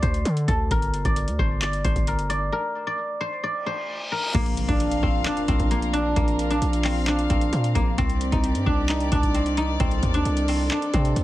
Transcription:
Already playing: A4 D5
0.02 D2 C5, kick, closed hi-hat
0.14 closed hi-hat
0.25 D3, closed hi-hat
0.37 closed hi-hat
0.48 D2 A4, kick, closed hi-hat
0.71 G1 A#4, kick, closed hi-hat
0.82 closed hi-hat
0.94 closed hi-hat
1.05 G1 D5, kick, closed hi-hat
1.16 closed hi-hat
1.28 D2, closed hi-hat
1.39 G1 C5, kick
1.62 D5, clap, closed hi-hat
1.73 closed hi-hat
1.84 G1 C5, kick, closed hi-hat
1.96 G1, kick, closed hi-hat
2.07 A#4, closed hi-hat
2.19 closed hi-hat
2.30 D5, closed hi-hat
2.52 A#4
2.87 D5
3.21 C5
3.44 D5, reverse cymbal
3.66 C5
4.12 A#4
4.35 A#1 A#3 C4 F4 A#4 F5, kick, closed hi-hat, crash, impact
4.46 closed hi-hat
4.57 closed hi-hat
4.68 A#1 D4, kick, closed hi-hat
4.80 closed hi-hat
4.91 closed hi-hat
5.03 A#1 C4, kick
5.25 D4, clap, closed hi-hat
5.37 closed hi-hat
5.48 A#1 C4, kick, closed hi-hat
5.60 A#1, kick, closed hi-hat
5.71 A#3, closed hi-hat
5.82 closed hi-hat
5.93 D4, closed hi-hat
6.16 A#1 A#3 F5, kick, closed hi-hat
6.28 closed hi-hat
6.39 closed hi-hat
6.51 D4, closed hi-hat
6.62 A#1, closed hi-hat
6.73 closed hi-hat
6.84 C4, clap, open hi-hat
7.07 D4, clap, closed hi-hat
7.19 closed hi-hat
7.30 A#1 C4, kick, closed hi-hat
7.41 closed hi-hat
7.53 A#2, closed hi-hat
7.64 closed hi-hat
7.75 A#1 A#3, kick, closed hi-hat
7.98 C2 D#3 C4 G4 D5, kick, closed hi-hat
8.10 closed hi-hat
8.21 closed hi-hat
8.32 C2 D#4, kick, closed hi-hat
8.44 closed hi-hat
8.55 G2, closed hi-hat
8.66 C2 D4, kick
8.89 D#4, clap, closed hi-hat
9.00 closed hi-hat
9.12 C2 D4, kick, closed hi-hat
9.23 kick, closed hi-hat
9.35 C4, closed hi-hat
9.46 closed hi-hat
9.57 D#4, closed hi-hat
9.80 C2 C4 A4, kick, closed hi-hat
9.91 closed hi-hat
10.03 D#2, kick, closed hi-hat
10.14 D4, closed hi-hat
10.25 C2, closed hi-hat
10.37 closed hi-hat
10.48 C4, open hi-hat
10.71 D4, clap, closed hi-hat
10.82 closed hi-hat
10.94 C3 C4, kick, closed hi-hat
11.05 closed hi-hat
11.16 C2, closed hi-hat

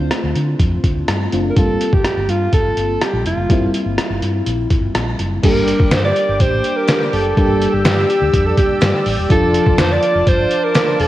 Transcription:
Already playing: A3 C4 D4 F4
0.11 cross-stick, closed hi-hat
0.24 D2
0.36 D3, closed hi-hat
0.59 F2, kick, closed hi-hat
0.84 D2, kick, closed hi-hat
1.08 G2, cross-stick, closed hi-hat
1.32 F#1 A3 C4 D4 F4, closed hi-hat
1.50 A#4
1.56 G1 G3 A#3 C4 F4 A4, kick, closed hi-hat
1.81 closed hi-hat
1.93 G1 G4, kick
2.04 cross-stick, closed hi-hat
2.17 G1
2.28 G2 F4, closed hi-hat
2.53 G1 A4, kick, closed hi-hat
2.77 G1, closed hi-hat
3.01 G4, cross-stick, closed hi-hat
3.13 A#1
3.25 F1 F4, closed hi-hat
3.37 F#1
3.49 G1 G3 A#3 C4 E4, kick, closed hi-hat
3.74 closed hi-hat
3.86 G1
3.98 cross-stick, closed hi-hat
4.10 G1
4.22 G2, closed hi-hat
4.47 A#1, closed hi-hat
4.70 G1, kick, closed hi-hat
4.95 A#1, cross-stick, closed hi-hat
5.19 F#1, closed hi-hat
5.43 G1 G3 A#3 D4 G4 A#4 D5 G5 D6, kick, closed hi-hat, crash
5.68 closed hi-hat
5.80 G1, kick
5.91 G2 C5, snare, clap, closed hi-hat
6.05 D5
6.16 closed hi-hat
6.29 G1
6.40 A1 C5, kick, closed hi-hat
6.64 closed hi-hat
6.77 A#4
6.88 snare, clap, closed hi-hat
7.06 A#4
7.13 F#1 A4, open hi-hat
7.36 G1 G3 A#3 D4 G4 E6, kick, closed hi-hat
7.61 closed hi-hat
7.73 G1 G4
7.85 G2, snare, clap, closed hi-hat
8.10 G4, closed hi-hat
8.21 D2
8.33 F2, kick, closed hi-hat
8.46 A4
8.57 G4, kick, closed hi-hat
8.82 G2, snare, clap, closed hi-hat
9.06 A1, open hi-hat
9.19 E1
9.29 F1 F3 D4 F4 A4 A5 D6, kick, closed hi-hat
9.55 closed hi-hat
9.67 F1, kick
9.78 F2 C5, snare, clap, closed hi-hat
9.92 D5
10.03 closed hi-hat
10.15 F1
10.27 G1 C5, kick, closed hi-hat
10.51 closed hi-hat
10.64 A#4
10.75 snare, clap, closed hi-hat
11.00 E1 A4, open hi-hat

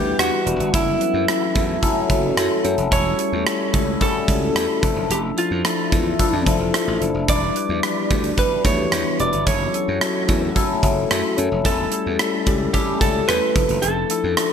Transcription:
Already playing: D2 E3 G3 B3 D4 E4 G4 B4 F#5
0.19 E2 G3 D4 E4 F#4 B4, cross-stick, closed hi-hat
0.45 E1 G3 D4 E4 B4, closed hi-hat
0.59 G1, closed hi-hat
0.73 F#1 F#3 A3 C#4 E4 F#4 A4, kick, closed hi-hat
1.00 F#3 C#4 E4 B4, closed hi-hat
1.14 F#2
1.28 F#3 C#4 E4 A4, cross-stick, closed hi-hat
1.55 E2 F#3 C#4 E4 A4, kick, closed hi-hat
1.82 F#3 C#4 E4 A4, kick, closed hi-hat
2.10 F#1 F#3 C#4 E4 A4, kick, closed hi-hat
2.37 F#2 F#3 C#4 E4 A4, cross-stick, closed hi-hat
2.64 F#2 F#3 C#4 E4 A4, closed hi-hat
2.78 F1, closed hi-hat
2.91 E1 G3 C#4 E4 G4 A4 C#5, kick, closed hi-hat
3.18 G3 C#4 E4 A4, closed hi-hat
3.33 E2
3.46 G3 C#4 E4 A4, cross-stick, closed hi-hat
3.73 C#2 G3 C#4 E4 A4, kick, closed hi-hat
4.00 G3 C#4 E4 F#4 A4, kick, closed hi-hat
4.27 C#2 G3 C#4 E4 A4, kick, closed hi-hat
4.54 E2 G3 C#4 E4 A4, cross-stick, closed hi-hat
4.82 F1 F3 D4 E4 A4 E5, kick, closed hi-hat
4.96 F#1
5.10 F1 G4, closed hi-hat
5.37 F3 D4 E4 F4 A4, closed hi-hat
5.51 F2
5.64 F3 D4 E4 A4, cross-stick, closed hi-hat
5.92 E2 F3 D4 E4 A4, kick, closed hi-hat
6.19 F3 D4 E4 A4, kick, closed hi-hat
6.33 F2
6.46 F1 F3 D4 E4 A4, kick, closed hi-hat
6.60 F1
6.73 F3 D4 E4 A4, cross-stick, closed hi-hat
6.88 A1
7.01 F#1 F3 D4 E4 A4, closed hi-hat
7.14 F1
7.28 E1 E3 G3 B3 D4 E4 F#4 G4 B4 D5, kick, closed hi-hat
7.56 G3 D4 E4 B4, closed hi-hat
7.69 E2
7.83 G3 D4 E4 B4, cross-stick, closed hi-hat
8.10 D2 G3 D4 E4 D5, kick, closed hi-hat
8.24 closed hi-hat
8.37 G3 D4 E4 B4, kick, closed hi-hat
8.65 D2 G3 D4 E4 B4 C#5, kick, closed hi-hat
8.92 E2 G3 D4 E4 B4, cross-stick, closed hi-hat
9.19 E1 G3 D4 E4 B4 D5, closed hi-hat
9.33 G1, closed hi-hat
9.46 F#1 F#3 A3 C#4 E4 A4 C#5, kick, closed hi-hat
9.74 F#3 C#4 E4 A4, closed hi-hat
9.88 F#2
10.01 F#3 C#4 E4 A4, cross-stick, closed hi-hat
10.28 E2 F#3 C#4 E4 A4, kick, closed hi-hat
10.55 F#3 C#4 E4 A4, kick, closed hi-hat
10.83 F#1 F#3 C#4 E4 A4, kick, closed hi-hat
11.10 F#2 F#3 C#4 E4 A4, cross-stick, closed hi-hat
11.37 F#2 F#3 C#4 E4 A4, closed hi-hat
11.52 F1
11.65 E1 G3 A3 C#4 E4 G4 A4, kick, closed hi-hat
11.92 G3 C#4 E4 A4, closed hi-hat
12.06 E2
12.19 G3 C#4 E4 A4, cross-stick, closed hi-hat
12.46 C#2 G3 C#4 E4 G4, kick, closed hi-hat
12.73 G3 C#4 E4 G4 A4, kick, closed hi-hat
13.01 C#2 G3 C#4 E4 A4, kick, closed hi-hat
13.28 E2 G3 C#4 E4 A4 B4, cross-stick, closed hi-hat
13.55 F1 F3 D4 E4 A4, kick, closed hi-hat
13.69 F#1, closed hi-hat
13.82 F1 A4, closed hi-hat
14.10 F3 D4 E4 A4, closed hi-hat
14.24 F2
14.37 F3 D4 E4 A4, cross-stick, closed hi-hat

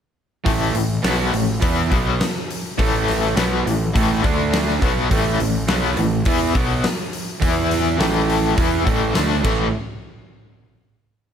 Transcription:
0.45 A1 A2 E3 A3, kick, open hi-hat
0.74 A1 A2 E3, open hi-hat
1.02 B1 B2 F#3 B3, snare, open hi-hat
1.32 A1 A2 E3, open hi-hat
1.62 E2 E3 B3 E4, kick, open hi-hat
1.90 B1 B2 F#3 B3, kick, open hi-hat
2.21 snare, open hi-hat
2.35 snare
2.50 open hi-hat
2.78 A1 A2 E3 A3, kick, open hi-hat
3.08 snare, open hi-hat
3.36 B1 B2 F#3 B3, snare, open hi-hat
3.66 A1 A2 E3, open hi-hat
3.93 A1 A2 E3 A3, kick, open hi-hat
4.22 D2 D3 A3 D4, kick, open hi-hat
4.53 snare, open hi-hat
4.69 snare
4.81 B1 B2 F#3 B3, kick, open hi-hat
5.10 A1 A2 E3 A3, kick, open hi-hat
5.39 A1 A2 E3, open hi-hat
5.68 B1 B2 F#3 B3, snare, open hi-hat
5.97 A1 A2 E3, open hi-hat
6.25 E2 E3 B3 E4, kick, open hi-hat
6.55 B1 B2 F#3 B3, kick, open hi-hat
6.84 snare, open hi-hat
7.13 open hi-hat
7.41 E2 E3 B3 E4, kick, open hi-hat
7.71 snare, open hi-hat
7.99 A1 A2 E3 A3, snare, open hi-hat
8.30 open hi-hat
8.57 E2 E3 B3 E4, kick, open hi-hat
8.86 A1 A2 E3 A3, kick, open hi-hat
9.14 D2 D3 A3 D4, snare, open hi-hat
9.42 A1 A2 E3 A3, kick, crash

